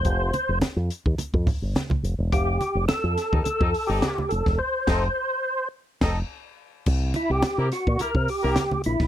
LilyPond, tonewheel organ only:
\new Staff \with { instrumentName = "Tonewheel organ" } { \time 4/4 \key f \major \tempo 4 = 106 c''4 r2. | g'4 a'4 a'8. g'8. a'8 | c''2 r2 | r8 e'16 g'8. fis'8 bes'8 g'4 e'8 | }